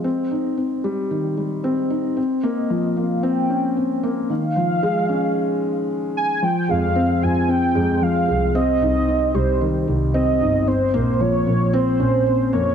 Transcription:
X:1
M:4/4
L:1/8
Q:1/4=113
K:Fm
V:1 name="Soft synth lead"
e c2 z4 z | z e2 f g3 z | f6 z a | g f2 a g2 f2 |
e3 c2 z e2 | c2 d2 c3 d |]
V:2 name="Felt piano"
C E C G, E, G, C E | C B, F, B, C D C B, | E, F, A, D z4 | F, A, C F C A, F, A, |
C E C G, E, G, C E | C B, F, B, C D C B, |]
V:3 name="Double bass section" clef=bass
z8 | z8 | z8 | z F,, z F,, z F,, z C,, |
z C,, z C,, z C,, z G,,, | z B,,, z B,,, z B,,, z F,, |]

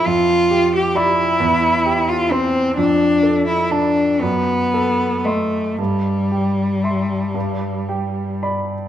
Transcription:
X:1
M:6/8
L:1/16
Q:3/8=40
K:C
V:1 name="Grand piano"
F,,2 G2 [db]2 E,,2 G2 [cc']2 | F,,2 A2 [da]2 ^F,,2 A2 [^dc']2 | G,,2 G2 [ec']2 G,,2 G2 [db]2 |]
V:2 name="Cello"
F3 G E4- E F C2 | D3 E D2 B,4 A,2 | G,8- G,2 z2 |]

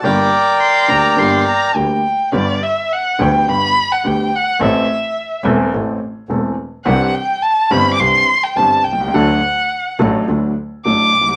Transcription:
X:1
M:4/4
L:1/16
Q:1/4=105
K:Gm
V:1 name="Violin"
z4 c'2 b2 c'2 b2 g4 | [K:G] d2 e2 f2 g2 b3 f g2 f2 | e6 z8 z2 | f2 g2 a2 b3/2 d'/2 c'3 g a2 g2 |
f6 z6 d'4 |]
V:2 name="Bandoneon"
[Bdg]12 z4 | [K:G] z16 | z16 | z16 |
z16 |]
V:3 name="Upright piano" clef=bass
[G,,,G,,D,G,B,G]2 z4 [D,,D,G,B,G]2 [G,,,G,,D,G,B,G]2 z2 [D,,D,G,B,G]2 z2 | [K:G] [G,,,G,,D,G,B,G]2 z4 [D,,D,G,B,G]2 [G,,,G,,D,G,B,G]2 z2 [D,,D,G,B,G]2 z2 | [A,,,A,,E,A,CA]2 z4 [E,,,E,,E,A,CA]2 [A,,,A,,E,A,CA]2 z2 [E,,,E,,E,A,CA]2 z2 | [C,,C,E,CDG]2 z4 [G,,,G,,E,CDG]2 [C,,C,E,CDG]2 z2 [G,,,G,,E,CDG]2 z/2 B,,,/2 C,,/2 ^C,,/2 |
[D,,D,F,A,DA]2 z4 [A,,,A,,F,A,DA]2 [D,,D,F,A,DA]2 z2 [A,,,A,,F,A,DA]2 z/2 B,,,/2 C,,/2 z/2 |]
V:4 name="Double bass" clef=bass
G,,,2 z4 D,,2 G,,,2 z2 D,,2 z2 | [K:G] G,,,2 z4 D,,2 G,,,2 z2 D,,2 z2 | A,,,2 z4 E,,,2 A,,,2 z2 E,,,2 z2 | C,,2 z4 G,,,2 C,,2 z2 G,,,2 C,,2 |
D,,2 z4 A,,,2 D,,2 z2 A,,,2 C,,2 |]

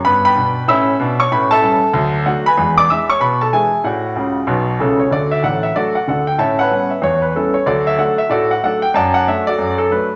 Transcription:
X:1
M:4/4
L:1/8
Q:"Swing" 1/4=188
K:D
V:1 name="Grand piano"
[Bb] [Bgb]3 [ebe']3 [cc'] | [Bb] [Aea]4- [Aea] [Ff] [B^gb]- | [B^gb] [dd'] [ee'] [cc'] [Bb] [Aa] [^Geg]2 | [Fdf]6 [CEA] c |
[FAd] e [Adf] e [FAd] f [Adf] g | [cea] [Bcf]2 e c B [CEA] c | [FAd] e [Adf] e [FAd] f [Adf] g | [dfa] f e [FAd]2 A B z |]
V:2 name="Grand piano" clef=bass
[G,,B,]2 [B,,D]2 [A,,C]2 [B,,D]2 | [A,,C]2 [G,CE]2 [D,,F,]2 [F,A,D]2 | [E,,^G,]2 [E,G,D]2 B,,2 [E,G,D]2 | A,,2 [C,,C,]2 [B,,,B,,]2 [C,,C,]2 |
[D,,D,]2 [A,,,A,,]2 [F,A,D]2 [D,,D,]2 | [A,,C]2 [G,B,C]2 E,,2 [G,B,]2 | [D,,F,]2 [F,A,D]2 A,,2 [F,A,D]2 | F,,2 [F,A,D]2 F,,2 [F,A,D]2 |]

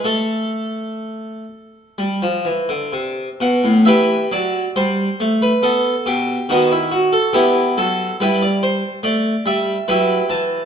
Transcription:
X:1
M:4/4
L:1/16
Q:1/4=69
K:Am
V:1 name="Harpsichord"
A12- A2 ^f2 | [K:Em] [GBe]2 d2 c3 B A2 G2 [B,^DF] E F A | [B,EG]2 A2 [EGB] d c2 d2 e2 [EGB]2 a2 |]
V:2 name="Harpsichord" clef=bass
A,8 G, F, E, D, C,2 B,, A,, | [K:Em] E,2 F,2 G,2 A,2 B,2 B,,2 ^D,4 | E,2 F,2 G,4 A,2 G,2 F,2 E,2 |]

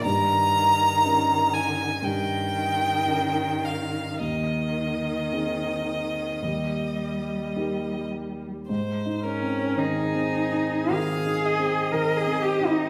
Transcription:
X:1
M:4/4
L:1/16
Q:1/4=55
K:Ab
V:1 name="Violin"
b6 a2 g6 f2 | e12- e2 z2 | c2 B2 A4 f2 e6 |]
V:2 name="Cello"
E,8 E,8 | E,8 G,8 | z2 D2 E4 A4 B A G E |]
V:3 name="Grand piano"
G,,4 [DEB]4 G,,4 [DEB]4 | E,,4 [CEA]4 E,,4 [B,EG]4 | (3A,,2 E2 C2 (3E,2 C2 E2 (3E,2 E2 C2 (3E,2 C2 E2 |]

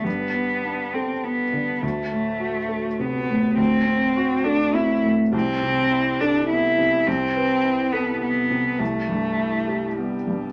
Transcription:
X:1
M:3/4
L:1/8
Q:1/4=103
K:Ador
V:1 name="Cello"
B,3 C B,2 | A,4 B,2 | C3 D E z | C3 D E2 |
C3 B, B,2 | A,4 G,2 |]
V:2 name="Felt piano"
[G,,D,] B, D A B, D, | D,, A,, F A C, A,, | D,, C F A C A,, | C,, C, E A B, C, |
C,, B E A B, C, | C,, G,, E G B, G,, |]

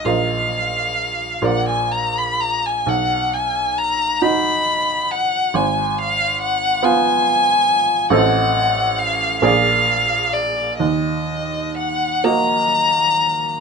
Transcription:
X:1
M:6/8
L:1/16
Q:3/8=44
K:Ebm
V:1 name="Violin"
f6 g a b c' b a | ^f2 a2 b2 =b4 f2 | a2 f2 g2 a6 | ^f4 =f2 f4 =d2 |
e4 g2 b6 |]
V:2 name="Grand piano"
[B,,,FBe]6 [B,,,FB=d]6 | =B,,,6 [^D^F^d]6 | A,,,6 [CFf]6 | [=A,,,=C=Ae]6 [B,,,B,_A=d]6 |
E,,6 [B,Ge]6 |]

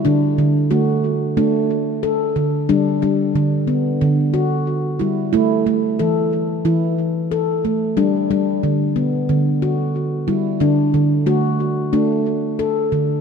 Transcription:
X:1
M:4/4
L:1/8
Q:"Swing 16ths" 1/4=91
K:Glyd
V:1 name="Handpan"
D2 F2 D2 A2 | D D2 B,2 F2 E | E2 A2 E2 A2 | D D2 B,2 F2 E |
D2 F2 D2 A2 |]
V:2 name="Handpan" clef=bass
D, D, A,2 A,3 D, | G, G, D,2 D,3 G, | A, A, E,2 E,3 A, | G, G, D,2 D,3 G, |
D, D, A,2 A,3 D, |]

